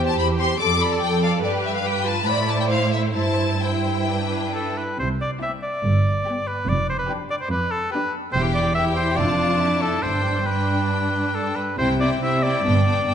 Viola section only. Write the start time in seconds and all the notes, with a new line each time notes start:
Already playing: G4
0.60 A4
1.43 B4
2.27 D5
2.70 C5
3.15 E4
5.43 C4
6.27 B3
7.09 D4
7.93 D4
8.34 E4
8.75 E4
9.17 D4
10.04 D4
10.47 D4
11.79 C4
12.02 C4
12.23 C4
12.45 C4
12.66 B3
12.86 B3
13.07 B3